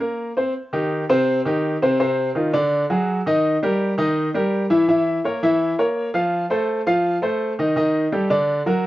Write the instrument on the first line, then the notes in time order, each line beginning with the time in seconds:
grand piano
0.00 A#3 A#4
0.37 C4 C5
0.73 D#3 D#4 G4
1.09 C3 C4 C5
1.45 D#3 D#4 G4
1.82 C3 C4 C5
2.00 C3 C4 C5
2.35 D#3 D#4 F4
2.54 D3 D4 D5
2.90 F#3 F#4 G#4
3.26 D#3 D#4 D#5
3.63 G3 G4 A#4
3.98 D#3 D#4 D#5
4.34 G3 G4 A#4
4.70 E3 E4 E5
4.88 E3 E4 E5
5.25 A#3 A#4 C#5
5.43 E3 E4 E5
5.79 A#3 A#4 C#5
6.14 F3 F4 F5
6.50 A3 A4 C5
6.87 F3 F4 F5
7.22 A3 A4 C5
7.59 D#3 D#4 D#5
7.76 D#3 D#4 D#5
8.12 G3 G4 A4
8.30 D3 D4 D5
8.66 F#3 F#4 A#4